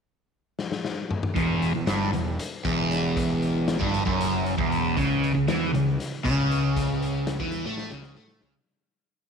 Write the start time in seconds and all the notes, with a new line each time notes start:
0.59 snare
0.72 snare
0.85 snare
1.11 mid tom
1.23 mid tom
1.36 E1 E2, kick, closed hi-hat
1.62 closed hi-hat
1.75 E1 E2
1.87 G1 G2, snare, closed hi-hat
2.13 E1 E2, closed hi-hat
2.39 closed hi-hat
2.65 E1 E2, kick, closed hi-hat
2.91 snare, closed hi-hat
3.17 kick, closed hi-hat
3.42 closed hi-hat
3.68 snare, closed hi-hat
3.80 G1 G2, kick
3.94 closed hi-hat
4.06 F#1 F#2, kick
4.21 closed hi-hat
4.46 closed hi-hat
4.57 E1 E2, kick
4.72 closed hi-hat
4.97 C#2 C#3, kick, closed hi-hat
5.24 closed hi-hat
5.35 C#2 C#3
5.48 E2 E3, snare, closed hi-hat
5.74 C#2 C#3, closed hi-hat
6.00 snare, closed hi-hat
6.25 C#2 C#3, kick, closed hi-hat
6.51 closed hi-hat
6.77 kick, closed hi-hat
7.02 closed hi-hat
7.27 snare, closed hi-hat
7.40 E2 E3, kick
7.52 closed hi-hat
7.65 A2 A3
7.78 snare
7.90 C#2 C#3, snare
8.02 snare
8.15 A2 A3, snare
8.28 snare
8.41 C#2 C#3, snare